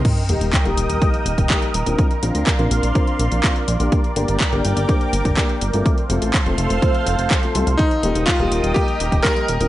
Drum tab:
CC |x---------------|----------------|----------------|----------------|
HH |xxxxxxxxxxxxxxxx|xxxxxxxxxxxxxxxx|xxxxxxxxxxxxxxxx|xxxxxxxxxxxxxxxx|
CP |----x-------x---|----x-------x---|----x-------x---|----x-------x---|
BD |o---o---o--oo---|o---o---o---o---|o---o---o--oo---|o---o---o---o---|

CC |----------------|
HH |xxxxxxxxxxxxxxxx|
CP |----x-------x---|
BD |o---o---o--oo---|